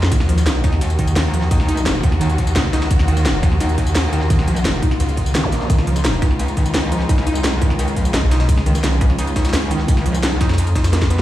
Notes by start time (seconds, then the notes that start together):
Already playing: F2
0.03 snare, ride
0.12 D#2 D#3 A#3 F4 F#4, kick, closed hi-hat, ride, tambourine
0.20 snare
0.29 F3, closed hi-hat, ride
0.38 snare, closed hi-hat, tambourine
0.46 D#4, snare, closed hi-hat, ride, tambourine
0.55 tambourine
0.64 D#2 D#4, kick, snare, closed hi-hat, ride
0.73 snare
0.81 snare, closed hi-hat, ride, tambourine
0.90 closed hi-hat, tambourine
0.99 D#3, kick, closed hi-hat, ride
1.07 closed hi-hat, tambourine
1.16 D#2 D#3, snare, closed hi-hat, open hi-hat
1.25 ride
1.34 F3, closed hi-hat, ride, tambourine
1.42 snare
1.51 D#4, kick, closed hi-hat, ride, tambourine
1.60 snare
1.69 D#4, closed hi-hat, ride, tambourine
1.77 closed hi-hat, tambourine
1.86 snare, closed hi-hat, ride, tambourine
1.95 tambourine
2.03 D#2 D#3, kick, closed hi-hat, ride
2.12 snare
2.21 D#3, closed hi-hat, ride, tambourine
2.30 closed hi-hat, tambourine
2.38 F3, kick, closed hi-hat, ride
2.47 closed hi-hat, tambourine
2.56 C#2 D#4, snare, closed hi-hat, ride
2.64 kick
2.73 D#4, snare, closed hi-hat, ride, tambourine
2.82 snare, ride
2.91 D#2, kick, closed hi-hat, ride, tambourine
2.99 snare
3.08 D#3, closed hi-hat, ride
3.17 snare, closed hi-hat, tambourine
3.25 D#3, snare, closed hi-hat, ride, tambourine
3.34 tambourine
3.43 D#2 F3, kick, snare, closed hi-hat, ride
3.52 snare
3.60 D#4, snare, closed hi-hat, ride, tambourine
3.69 closed hi-hat, tambourine
3.78 D#4, kick, closed hi-hat, ride
3.87 closed hi-hat, tambourine
3.95 D#2, snare, closed hi-hat, open hi-hat
4.04 ride
4.13 D#3, closed hi-hat, ride, tambourine
4.21 snare
4.30 D#3, kick, closed hi-hat, ride, tambourine
4.39 snare
4.48 F3, closed hi-hat, ride, tambourine
4.56 closed hi-hat, tambourine
4.65 D#4, snare, closed hi-hat, ride, tambourine
4.74 tambourine
4.82 D#4, kick, closed hi-hat, ride
4.91 snare
5.00 C#2, closed hi-hat, ride, tambourine
5.09 closed hi-hat, tambourine
5.17 D#3, kick, closed hi-hat, ride
5.26 closed hi-hat, tambourine
5.35 D#3, snare, closed hi-hat, ride
5.44 kick, zap
5.52 A#1 A#3, snare, closed hi-hat, ride, tambourine
5.61 snare
5.70 C#2 C#3 D#3 G#3 D#4, kick, closed hi-hat, ride, tambourine
5.78 snare
5.87 F3, closed hi-hat, ride
5.96 snare, closed hi-hat, tambourine
6.05 D#4, snare, closed hi-hat, ride, tambourine
6.13 tambourine
6.22 C#2 D#4, kick, snare, closed hi-hat, ride
6.31 snare
6.39 snare, closed hi-hat, ride, tambourine
6.48 closed hi-hat, tambourine
6.57 D#3, kick, closed hi-hat, ride
6.66 closed hi-hat, tambourine
6.74 C#2 D#3, snare, closed hi-hat, open hi-hat
6.83 ride
6.92 F3, closed hi-hat, ride, tambourine
7.00 snare
7.09 D#4, kick, closed hi-hat, ride, tambourine
7.18 snare
7.27 D#4, closed hi-hat, ride, tambourine
7.35 C2, closed hi-hat, tambourine
7.44 snare, closed hi-hat, ride, tambourine
7.53 tambourine
7.62 C#2 D#3, kick, closed hi-hat, ride
7.70 snare
7.79 D#3, closed hi-hat, ride, tambourine
7.88 closed hi-hat, tambourine
7.96 F3, kick, closed hi-hat, ride
8.05 closed hi-hat, tambourine
8.14 B1 D#4, snare, closed hi-hat, ride
8.23 kick
8.31 D#4, snare, closed hi-hat, ride, tambourine
8.40 snare, ride
8.49 C#2 C#4, kick, closed hi-hat, ride, tambourine
8.57 snare
8.66 D#3, closed hi-hat, ride
8.75 snare, closed hi-hat, tambourine
8.84 D#3, snare, closed hi-hat, ride, tambourine
8.92 tambourine
9.01 C#2 F3, kick, closed hi-hat, ride
9.10 snare
9.19 D#4, snare, closed hi-hat, ride, tambourine
9.27 closed hi-hat, tambourine
9.36 D#4, kick, snare, closed hi-hat, ride
9.45 snare, closed hi-hat, ride, tambourine
9.49 snare, ride
9.53 C#2, snare, closed hi-hat, open hi-hat
9.62 ride
9.71 D#3, closed hi-hat, ride, tambourine
9.80 snare
9.88 D#3, kick, closed hi-hat, ride, tambourine
9.97 snare
10.06 F3, closed hi-hat, ride, tambourine
10.14 C2, closed hi-hat, tambourine
10.23 D#4, snare, closed hi-hat, ride, tambourine
10.32 tambourine
10.41 F2 D#4, kick, snare, closed hi-hat, ride
10.49 snare, ride
10.54 snare, ride
10.58 closed hi-hat, ride, tambourine
10.67 closed hi-hat, tambourine
10.76 D#4, kick, snare, closed hi-hat, ride
10.84 snare, closed hi-hat, ride, tambourine
10.93 A#3, snare, closed hi-hat, ride
11.02 kick, snare, ride
11.10 B3, closed hi-hat, ride, tambourine